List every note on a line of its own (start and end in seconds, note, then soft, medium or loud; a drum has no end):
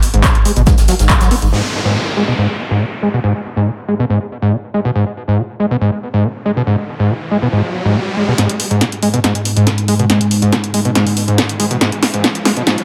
0.00 1.57 G#2 medium
0.00 open hi-hat loud
0.00 shaker medium
0.14 0.24 G#1 medium
0.14 0.25 G#2 loud
0.14 closed hi-hat medium
0.24 0.28 B2 loud
0.24 kick loud
0.24 snare loud
0.24 clap loud
0.24 closed hi-hat loud
0.24 shaker medium
0.35 0.45 G#1 medium
0.35 closed hi-hat medium
0.45 0.52 G#3 medium
0.45 open hi-hat loud
0.45 shaker medium
0.56 0.67 G#1 medium
0.56 0.62 B2 loud
0.56 closed hi-hat soft
0.56 closed hi-hat medium
0.66 0.76 G#2 loud
0.66 kick loud
0.66 snare loud
0.66 closed hi-hat medium
0.66 shaker medium
0.78 0.88 G#1 medium
0.78 snare loud
0.78 open hi-hat medium
0.78 shaker medium
0.88 0.94 F#3 loud
0.88 snare loud
0.88 open hi-hat loud
0.88 shaker medium
0.99 1.09 G#1 medium
0.99 1.08 G#2 medium
0.99 snare medium
0.99 closed hi-hat medium
0.99 shaker medium
1.09 1.16 G#2 medium
1.09 kick loud
1.09 snare loud
1.09 clap loud
1.09 closed hi-hat medium
1.09 shaker medium
1.21 1.31 G#1 medium
1.21 1.29 F#3 loud
1.21 snare loud
1.21 closed hi-hat medium
1.21 shaker medium
1.31 1.35 B3 loud
1.31 open hi-hat loud
1.31 open hi-hat medium
1.42 1.52 G#1 medium
1.42 1.48 G#2 medium
1.42 closed hi-hat medium
1.53 1.62 G#2 loud
1.53 downlifter medium
1.85 1.97 G#2 loud
1.95 1.99 B2 loud
2.17 2.23 G#3 medium
2.28 2.34 B2 loud
2.38 2.47 G#2 loud
2.71 2.83 G#2 loud
2.81 2.85 B2 loud
3.03 3.09 G#3 medium
3.14 3.19 B2 loud
3.24 3.33 G#2 loud
3.57 3.68 G#2 loud
3.67 3.71 B2 loud
3.88 3.94 G#3 medium
3.99 4.05 B2 loud
4.10 4.19 G#2 loud
4.42 4.54 G#2 loud
4.53 4.56 B2 loud
4.74 4.80 G#3 medium
4.85 4.91 B2 loud
4.95 5.05 G#2 loud
4.95 riser medium
5.28 5.40 G#2 loud
5.38 5.42 B2 loud
5.60 5.66 G#3 medium
5.71 5.77 B2 loud
5.81 5.90 G#2 loud
6.14 6.26 G#2 loud
6.24 6.28 B2 loud
6.45 6.52 G#3 medium
6.57 6.62 B2 loud
6.67 6.76 G#2 loud
6.99 7.11 G#2 loud
7.10 7.13 B2 loud
7.31 7.37 G#3 medium
7.42 7.48 B2 loud
7.53 7.62 G#2 loud
7.85 7.97 G#2 loud
7.95 7.99 B2 loud
8.17 8.23 G#3 medium
8.28 8.34 B2 loud
8.38 8.47 G#2 loud
8.38 12.84 G#2 medium
8.38 snare soft
8.38 closed hi-hat medium
8.38 riser medium
8.49 closed hi-hat medium
8.60 open hi-hat loud
8.71 8.83 G#2 loud
8.71 closed hi-hat medium
8.81 8.85 B2 loud
8.81 snare medium
8.81 closed hi-hat medium
8.92 closed hi-hat medium
9.02 9.09 G#3 medium
9.02 open hi-hat loud
9.14 9.19 B2 loud
9.14 closed hi-hat medium
9.24 9.33 G#2 loud
9.24 snare medium
9.24 closed hi-hat medium
9.35 closed hi-hat medium
9.45 open hi-hat loud
9.56 9.68 G#2 loud
9.56 closed hi-hat medium
9.67 9.70 B2 loud
9.67 snare medium
9.67 closed hi-hat loud
9.78 closed hi-hat medium
9.88 9.94 G#3 medium
9.88 open hi-hat loud
9.99 10.05 B2 loud
9.99 closed hi-hat medium
10.10 10.19 G#2 loud
10.10 snare medium
10.10 closed hi-hat medium
10.21 closed hi-hat medium
10.31 open hi-hat loud
10.42 10.54 G#2 loud
10.42 closed hi-hat medium
10.52 10.56 B2 loud
10.52 snare medium
10.52 closed hi-hat medium
10.64 closed hi-hat medium
10.74 10.80 G#3 medium
10.74 open hi-hat loud
10.85 10.91 B2 loud
10.85 closed hi-hat medium
10.95 11.05 G#2 loud
10.95 snare medium
10.95 closed hi-hat medium
11.07 open hi-hat medium
11.17 open hi-hat loud
11.28 11.40 G#2 loud
11.28 closed hi-hat medium
11.38 11.42 B2 loud
11.38 snare medium
11.38 closed hi-hat loud
11.49 closed hi-hat medium
11.60 11.66 G#3 medium
11.60 open hi-hat loud
11.71 11.77 B2 loud
11.71 closed hi-hat medium
11.81 11.90 G#2 loud
11.81 snare medium
11.81 closed hi-hat medium
11.92 closed hi-hat medium
12.03 snare medium
12.03 open hi-hat loud
12.14 12.25 G#2 loud
12.14 closed hi-hat medium
12.24 12.28 B2 loud
12.24 snare medium
12.24 closed hi-hat loud
12.35 closed hi-hat medium
12.45 12.52 G#3 medium
12.45 snare medium
12.45 open hi-hat loud
12.57 12.62 B2 loud
12.57 closed hi-hat medium
12.67 12.76 G#2 loud
12.67 snare medium
12.67 closed hi-hat medium
12.78 closed hi-hat medium